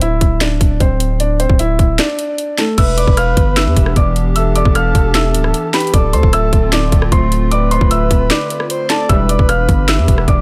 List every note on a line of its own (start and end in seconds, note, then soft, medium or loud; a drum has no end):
0.00 0.20 D1 loud
0.00 0.39 E4 medium
0.00 0.39 E5 medium
0.00 closed hi-hat medium
0.21 0.59 D1 loud
0.21 kick medium
0.21 closed hi-hat medium
0.41 0.78 D4 medium
0.41 0.78 D5 medium
0.41 snare loud
0.41 closed hi-hat medium
0.61 0.80 D1 loud
0.61 kick loud
0.61 closed hi-hat medium
0.80 1.47 D1 loud
0.80 1.18 C4 medium
0.80 1.18 C5 medium
0.80 kick loud
0.80 closed hi-hat medium
1.00 closed hi-hat medium
1.20 1.38 D4 medium
1.20 1.38 D5 medium
1.20 closed hi-hat medium
1.40 1.58 C4 medium
1.40 1.57 C5 medium
1.40 closed hi-hat medium
1.49 1.78 D1 loud
1.49 kick loud
1.59 1.97 E4 medium
1.59 1.96 E5 medium
1.59 closed hi-hat medium
1.79 1.99 D1 loud
1.79 kick medium
1.79 closed hi-hat medium
1.99 2.55 D4 medium
1.99 2.55 D5 medium
1.99 snare loud
1.99 closed hi-hat medium
2.19 closed hi-hat medium
2.38 closed hi-hat medium
2.58 2.76 A3 medium
2.58 2.76 A4 medium
2.58 snare medium
2.58 closed hi-hat medium
2.78 3.06 E1 loud
2.78 5.91 E3 medium
2.78 5.91 B3 medium
2.78 5.91 D4 medium
2.78 5.91 G4 medium
2.78 3.92 B4 loud
2.78 2.96 E5 medium
2.78 2.95 E6 medium
2.78 kick loud
2.78 closed hi-hat medium
2.78 crash loud
2.98 3.16 D5 medium
2.98 3.15 D6 medium
2.98 closed hi-hat medium
3.07 3.36 E1 loud
3.07 kick loud
3.17 3.55 F5 medium
3.17 3.54 F6 medium
3.17 cross-stick medium
3.17 closed hi-hat medium
3.37 3.68 G1 loud
3.37 kick medium
3.37 closed hi-hat medium
3.57 3.94 E5 medium
3.57 3.94 E6 medium
3.57 snare loud
3.57 closed hi-hat medium
3.67 3.76 E2 loud
3.77 3.95 E1 loud
3.77 kick loud
3.77 closed hi-hat medium
3.86 cross-stick loud
3.96 4.63 E1 loud
3.96 4.34 D5 medium
3.96 4.33 D6 medium
3.96 kick loud
3.96 closed hi-hat medium
4.16 closed hi-hat medium
4.36 5.70 A4 loud
4.36 4.54 E5 medium
4.36 4.53 E6 medium
4.36 closed hi-hat medium
4.56 4.74 D5 medium
4.56 4.73 D6 medium
4.56 closed hi-hat medium
4.65 4.94 E1 loud
4.65 kick loud
4.75 5.13 F5 medium
4.75 5.12 F6 medium
4.75 cross-stick medium
4.75 closed hi-hat medium
4.95 5.36 E1 loud
4.95 kick medium
4.95 closed hi-hat medium
5.15 5.71 E5 medium
5.15 5.70 E6 medium
5.15 snare loud
5.15 closed hi-hat medium
5.34 5.53 D1 loud
5.34 closed hi-hat medium
5.44 cross-stick loud
5.54 closed hi-hat medium
5.74 5.93 G4 medium
5.74 5.92 B4 medium
5.74 5.91 B5 medium
5.74 snare medium
5.74 closed hi-hat medium
5.74 open hi-hat medium
5.80 closed hi-hat medium
5.87 closed hi-hat soft
5.93 6.15 D1 loud
5.93 9.06 D3 medium
5.93 9.06 A3 medium
5.93 9.06 C4 medium
5.93 9.06 F4 loud
5.93 7.08 A4 loud
5.93 6.12 D5 medium
5.93 6.11 D6 medium
5.93 kick loud
5.93 closed hi-hat medium
6.13 6.23 D2 loud
6.13 6.31 C5 medium
6.13 6.31 C6 medium
6.13 closed hi-hat medium
6.23 6.52 D1 loud
6.23 kick loud
6.33 6.71 E5 medium
6.33 6.70 E6 medium
6.33 cross-stick medium
6.33 closed hi-hat medium
6.53 6.91 D1 loud
6.53 kick medium
6.53 closed hi-hat medium
6.72 7.10 D5 medium
6.72 7.10 D6 medium
6.72 snare loud
6.72 closed hi-hat medium
6.92 7.11 D1 loud
6.92 kick loud
6.92 closed hi-hat medium
7.02 cross-stick loud
7.12 7.78 D1 loud
7.12 7.50 C5 medium
7.12 7.49 C6 medium
7.12 kick loud
7.12 closed hi-hat medium
7.32 closed hi-hat medium
7.51 8.66 B4 loud
7.51 7.69 D5 medium
7.51 7.69 D6 medium
7.51 closed hi-hat medium
7.71 7.89 C5 medium
7.71 7.89 C6 medium
7.71 closed hi-hat medium
7.81 8.10 D1 loud
7.81 kick loud
7.91 8.28 E5 medium
7.91 8.28 E6 medium
7.91 closed hi-hat medium
8.11 8.30 D1 loud
8.11 kick medium
8.11 closed hi-hat medium
8.30 8.86 D5 medium
8.30 8.86 D6 medium
8.30 snare loud
8.30 closed hi-hat medium
8.50 closed hi-hat medium
8.60 cross-stick loud
8.70 8.89 C5 medium
8.70 closed hi-hat medium
8.90 9.08 A4 medium
8.90 9.09 D5 medium
8.90 9.07 A5 medium
8.90 snare medium
8.90 closed hi-hat medium
9.09 9.38 E1 loud
9.09 9.38 D3 loud
9.09 9.38 E3 loud
9.09 10.41 E3 medium
9.09 9.38 G3 loud
9.09 10.41 B3 medium
9.09 10.41 D4 medium
9.09 10.41 G4 medium
9.09 10.24 B4 loud
9.09 9.27 E5 medium
9.09 9.27 E6 medium
9.09 kick loud
9.09 closed hi-hat medium
9.29 9.47 D5 medium
9.29 9.47 D6 medium
9.29 closed hi-hat medium
9.39 9.67 E1 loud
9.39 kick loud
9.49 9.86 F5 medium
9.49 9.86 F6 medium
9.49 cross-stick medium
9.49 closed hi-hat medium
9.69 10.00 G1 loud
9.69 kick medium
9.69 closed hi-hat medium
9.88 10.26 E5 medium
9.88 10.25 E6 medium
9.88 snare loud
9.88 closed hi-hat medium
9.98 10.08 E2 loud
10.08 10.27 E1 loud
10.08 kick medium
10.08 closed hi-hat medium
10.18 cross-stick loud
10.28 10.41 E1 loud
10.28 10.41 D5 medium
10.28 10.41 D6 medium
10.28 kick loud
10.28 closed hi-hat medium